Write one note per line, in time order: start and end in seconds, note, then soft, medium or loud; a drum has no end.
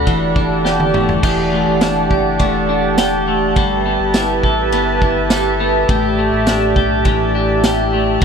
0.00 0.12 B2 medium
0.00 0.68 A3 medium
0.00 0.35 D4 medium
0.00 0.64 F#4 medium
0.00 1.21 F#5 medium
0.06 1.19 E1 loud
0.06 1.23 E3 medium
0.06 1.22 G4 medium
0.06 1.22 D5 medium
0.06 1.22 A5 medium
0.06 kick medium
0.06 ride medium
0.36 1.81 D4 medium
0.36 kick medium
0.65 1.23 G4 medium
0.65 snare medium
0.80 high tom medium
0.94 1.52 A3 medium
0.94 mid tom medium
1.09 floor tom medium
1.23 1.65 E1 loud
1.23 3.56 E3 medium
1.23 3.54 G4 medium
1.23 2.10 G4 medium
1.23 3.54 D5 medium
1.23 3.54 F#5 medium
1.23 8.18 A5 medium
1.23 kick loud
1.23 crash medium
1.52 2.39 A3 medium
1.68 2.09 E1 medium
1.81 2.69 D4 medium
1.81 snare loud
1.81 ride medium
1.81 tambourine medium
2.11 2.38 F#1 medium
2.11 2.98 G4 medium
2.11 kick medium
2.39 3.58 E1 loud
2.39 3.27 A3 medium
2.39 kick medium
2.39 ride medium
2.69 4.15 D4 medium
2.98 3.57 G4 medium
2.98 snare loud
2.98 ride medium
2.98 tambourine medium
3.28 3.85 A3 medium
3.56 3.98 G1 loud
3.56 5.93 G3 medium
3.56 8.19 G4 medium
3.56 4.44 A4 medium
3.56 5.87 B4 medium
3.56 8.19 E5 medium
3.56 kick loud
3.56 ride medium
3.86 4.72 B3 medium
4.00 4.41 G1 loud
4.14 5.02 E4 medium
4.14 snare loud
4.14 ride medium
4.14 tambourine medium
4.43 4.74 A1 loud
4.43 5.31 A4 medium
4.43 kick medium
4.72 5.85 G1 loud
4.72 5.59 B3 medium
4.72 ride medium
5.02 6.47 E4 medium
5.02 kick medium
5.30 5.90 A4 medium
5.30 snare loud
5.30 ride medium
5.30 tambourine medium
5.60 5.95 B3 medium
5.89 6.31 A1 loud
5.89 8.22 A2 medium
5.89 6.75 G4 medium
5.89 8.25 D5 medium
5.89 kick loud
5.89 ride medium
6.18 7.93 A3 medium
6.32 6.74 A1 loud
6.46 7.35 D4 medium
6.46 snare loud
6.46 ride medium
6.46 tambourine medium
6.76 7.04 B1 loud
6.76 7.63 G4 medium
6.76 kick medium
7.05 8.18 A1 loud
7.05 8.25 E3 medium
7.05 kick medium
7.05 ride medium
7.35 8.25 D4 medium
7.64 8.22 G4 medium
7.64 snare loud
7.64 ride medium
7.64 tambourine medium
7.93 8.25 A3 medium
8.21 8.25 A4 medium
8.21 8.25 F#5 medium
8.21 8.25 B5 medium
8.21 ride medium